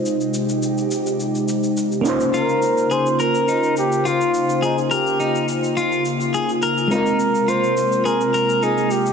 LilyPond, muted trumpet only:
\new Staff \with { instrumentName = "Muted trumpet" } { \time 4/4 \key des \lydian \tempo 4 = 105 r1 | bes'4 c''8 bes'4 g'8 f'4 | ees'8 g'4 r2 r8 | bes'4 c''4 bes'4 aes'8 g'8 | }